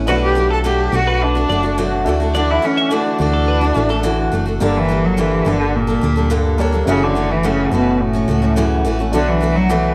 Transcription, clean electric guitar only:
0.08 0.35 B4 medium
0.51 0.64 A4 medium
0.65 0.78 A4 medium
1.07 1.34 B4 medium
1.50 1.63 D5 medium
2.35 2.62 D5 medium
2.77 2.91 E5 medium
2.91 3.05 D5 medium
3.34 3.47 A4 medium
3.48 3.62 B4 medium
3.90 4.17 A4 medium

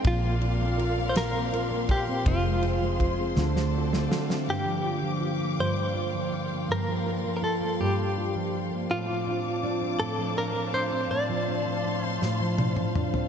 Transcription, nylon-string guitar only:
0.00 0.12 G#3 medium
0.00 0.12 D#4 medium
0.00 0.12 G#4 medium
0.00 0.26 C5 medium
0.04 1.14 A#2 medium
0.23 0.58 A#3 medium
0.42 0.78 F4 medium
0.59 1.32 A#3 medium
0.78 1.51 F4 medium
0.97 2.08 C4 medium
1.15 2.33 A#2 medium
1.33 1.69 A#3 medium
1.52 1.88 F4 medium
1.71 2.33 A#3 medium
1.89 2.33 F4 medium
2.08 3.17 C4 medium
2.26 3.36 F3 medium
2.45 2.80 G#3 medium
2.62 2.98 F4 medium
2.81 3.44 G#3 medium
2.99 3.44 F4 medium
3.18 3.44 C4 medium
3.37 6.87 D3 loud
3.55 3.91 A3 medium
3.74 4.09 F#4 medium
3.92 4.55 A3 medium
4.11 4.55 F#4 medium
4.28 4.54 C4 medium
4.48 5.57 G2 medium
4.66 5.02 F3 medium
4.84 5.20 F4 medium
5.02 5.76 F3 medium
5.21 5.94 F4 medium
5.40 6.49 A#3 soft
5.58 6.67 G2 loud
5.76 6.13 F3 medium
5.94 6.31 F4 medium
6.14 6.87 F3 medium
6.31 7.06 F4 medium
6.50 7.59 A#3 medium
6.68 7.79 G2 medium
6.88 7.24 F3 medium
7.06 7.42 F4 medium
7.24 7.98 F3 medium
7.42 8.17 F4 medium
7.61 8.70 A#3 medium
7.80 8.90 G2 medium
7.98 8.35 F3 medium
8.18 8.53 F4 medium
8.36 9.08 F3 medium
8.53 9.26 F4 medium
8.71 8.97 A#3 medium
8.90 9.98 A2 medium
9.09 9.44 F3 medium
9.27 9.63 D4 medium
9.44 10.17 F3 medium
9.63 10.36 D4 medium
9.81 10.91 C4 medium
9.99 11.09 A2 loud
10.18 10.54 F3 medium
10.37 10.73 D4 medium
10.54 11.29 F3 medium
10.73 11.47 D4 medium
10.91 12.03 C4 medium
11.10 12.20 A2 medium
11.29 11.65 F3 medium
11.48 11.84 D4 medium
11.66 12.39 F3 medium
11.84 12.58 D4 medium
12.03 13.13 C4 medium
12.21 13.28 A2 medium
12.40 12.77 F3 medium
12.59 12.95 D4 medium
12.77 13.28 F3 medium
12.95 13.28 D4 medium
13.14 13.28 C4 medium

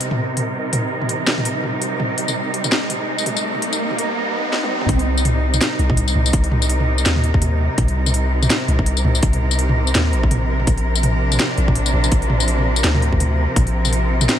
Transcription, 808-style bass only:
4.89 5.60 C2 loud
5.79 6.14 C2 loud
6.15 6.32 C2 medium
6.33 7.05 C2 loud
7.06 7.33 D#2 medium
7.34 7.69 D#2 loud
7.78 8.49 C2 loud
8.68 9.03 C2 loud
9.04 9.21 C2 medium
9.23 9.94 C2 loud
9.95 10.15 D#2 medium
10.13 10.66 A#1 loud
10.67 11.38 A#1 loud
11.58 11.93 A#1 loud
11.94 12.10 A#1 medium
12.12 12.83 A#1 loud
12.84 13.11 D2 medium
13.12 13.47 D2 loud
13.56 14.28 A#1 loud

